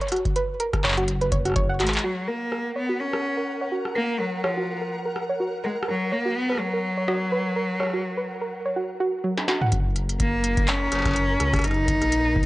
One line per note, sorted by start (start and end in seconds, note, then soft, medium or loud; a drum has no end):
0.01 0.07 C#5 medium
0.01 closed hi-hat soft
0.08 cross-stick medium
0.08 closed hi-hat soft
0.12 0.19 F#4 medium
0.12 closed hi-hat medium
0.16 closed hi-hat soft
0.25 kick loud
0.25 closed hi-hat soft
0.36 0.40 B4 medium
0.36 closed hi-hat medium
0.60 0.67 A#4 medium
0.60 closed hi-hat medium
0.73 kick loud
0.73 cross-stick medium
0.73 closed hi-hat soft
0.84 1.55 F#1 medium
0.84 0.91 C#5 medium
0.84 clap loud
0.88 clap medium
0.92 clap medium
0.97 1.03 F#4 medium
0.97 closed hi-hat soft
1.08 closed hi-hat medium
1.21 1.25 B4 medium
1.21 closed hi-hat soft
1.32 1.36 C#5 medium
1.32 kick loud
1.32 closed hi-hat medium
1.45 1.53 F#4 medium
1.45 cross-stick soft
1.45 closed hi-hat medium
1.48 cross-stick soft
1.50 cross-stick soft
1.52 cross-stick soft
1.54 1.81 F#1 medium
1.54 1.66 C#5 medium
1.54 kick loud
1.54 cross-stick soft
1.54 closed hi-hat medium
1.69 1.73 F#5 medium
1.80 1.98 G#1 loud
1.80 2.06 G#3 medium
1.80 1.84 F#4 medium
1.80 clap medium
1.80 closed hi-hat medium
1.87 clap medium
1.87 closed hi-hat medium
1.93 clap medium
1.93 closed hi-hat medium
1.99 closed hi-hat medium
2.04 2.29 F#3 medium
2.04 2.11 F#4 medium
2.04 8.76 A#4 medium
2.04 8.76 F#5 medium
2.28 2.75 A#3 medium
2.28 2.32 A#4 medium
2.52 2.59 A#4 medium
2.52 cross-stick soft
2.76 3.01 B3 medium
2.76 2.83 C#5 medium
2.89 2.95 F#4 medium
3.00 3.72 C#4 medium
3.13 3.17 A#4 medium
3.13 cross-stick medium
3.37 3.43 A#4 medium
3.61 3.67 C#5 medium
3.72 3.79 F#4 medium
3.85 cross-stick soft
3.96 4.21 A#3 loud
3.96 4.00 A#4 medium
4.20 4.45 F#3 medium
4.20 4.27 A#4 medium
4.44 4.92 F3 medium
4.44 4.51 C#5 medium
4.44 cross-stick medium
4.57 4.63 F#4 medium
4.81 4.85 A#4 medium
5.05 5.11 A#4 medium
5.16 cross-stick soft
5.29 5.35 C#5 medium
5.40 5.47 F#4 medium
5.64 5.75 G#3 medium
5.64 5.68 A#4 medium
5.83 cross-stick medium
5.88 6.14 F#3 medium
5.88 5.95 A#4 medium
6.12 6.38 A#3 medium
6.12 6.19 C#5 medium
6.25 6.31 F#4 medium
6.36 6.62 B3 loud
6.49 6.53 B4 medium
6.49 cross-stick soft
6.52 cross-stick soft
6.55 cross-stick soft
6.57 8.76 F#3 loud
6.57 cross-stick soft
6.73 6.79 A#4 medium
6.97 7.03 C#5 medium
7.08 7.15 F#4 medium
7.08 cross-stick medium
7.32 7.36 B4 medium
7.56 7.63 A#4 medium
7.80 7.87 C#5 medium
7.80 cross-stick soft
7.83 cross-stick soft
7.87 cross-stick soft
7.90 cross-stick soft
7.93 7.99 F#4 medium
7.93 cross-stick soft
7.96 cross-stick soft
7.99 cross-stick soft
8.01 cross-stick soft
8.17 8.21 B4 medium
8.41 8.47 A#4 medium
8.65 8.71 C#5 medium
8.76 8.83 F#4 medium
9.00 9.10 F#4 loud
9.24 9.28 F#3 loud
9.38 snare soft
9.48 9.52 F#4 loud
9.48 snare medium
9.61 9.67 F#5 medium
9.61 mid tom medium
9.72 10.88 F#1 loud
9.72 12.46 A#4 medium
9.72 12.46 A#5 medium
9.72 kick loud
9.72 closed hi-hat medium
9.96 closed hi-hat medium
10.09 closed hi-hat medium
10.20 10.70 A#3 medium
10.20 kick loud
10.20 closed hi-hat medium
10.44 closed hi-hat medium
10.57 kick loud
10.57 closed hi-hat medium
10.68 11.66 C#4 loud
10.68 clap loud
10.68 closed hi-hat medium
10.92 11.36 F#1 medium
10.92 cross-stick soft
10.92 closed hi-hat medium
10.92 struck metal soft
10.95 struck metal soft
10.99 cross-stick soft
10.99 struck metal medium
11.02 kick loud
11.02 cross-stick medium
11.02 closed hi-hat medium
11.02 struck metal medium
11.06 struck metal medium
11.08 struck metal medium
11.11 struck metal medium
11.13 closed hi-hat medium
11.13 struck metal medium
11.40 11.59 C#2 medium
11.40 cross-stick medium
11.40 closed hi-hat medium
11.53 kick loud
11.53 cross-stick medium
11.53 closed hi-hat medium
11.56 cross-stick medium
11.56 closed hi-hat soft
11.59 closed hi-hat soft
11.62 cross-stick medium
11.62 closed hi-hat soft
11.64 11.96 F#1 loud
11.64 12.46 D#4 loud
11.64 closed hi-hat medium
11.67 cross-stick soft
11.67 closed hi-hat soft
11.71 closed hi-hat soft
11.74 closed hi-hat soft
11.88 kick loud
11.88 closed hi-hat medium
12.02 12.46 A#1 medium
12.02 cross-stick soft
12.02 closed hi-hat medium
12.12 closed hi-hat medium
12.36 kick loud